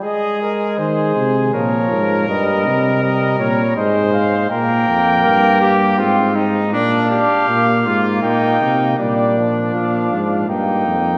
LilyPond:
<<
  \new Staff \with { instrumentName = "Cornet" } { \time 3/4 \key aes \major \tempo 4 = 80 ees''8 bes'8 c''4 des''4 | ees''4 ees''8 des''8 ees''8 f''8 | g''2~ g''8 r8 | f''2 g''4 |
d''4 f''4 g''4 | }
  \new Staff \with { instrumentName = "Trumpet" } { \time 3/4 \key aes \major aes'4 aes'4 bes'4~ | bes'2 c''4 | bes'4 bes'8 g'8 f'8 ees'8 | d'8 g'4 f'8 ees'4 |
d'2 ees'4 | }
  \new Staff \with { instrumentName = "Trombone" } { \clef bass \time 3/4 \key aes \major aes2 f4 | g4 g4 aes4 | bes2 c'8 r8 | d'4 bes2 |
g8 f4. bes4 | }
  \new Staff \with { instrumentName = "Tuba" } { \clef bass \time 3/4 \key aes \major r4 ees8 c8 bes,8 aes,8 | g,8 c4 bes,8 aes,4 | bes,8 f,8 g,4 aes,4 | bes,8 r8 bes,8 aes,8 bes,8 c8 |
bes,4 bes,8 aes,8 g,8 f,8 | }
>>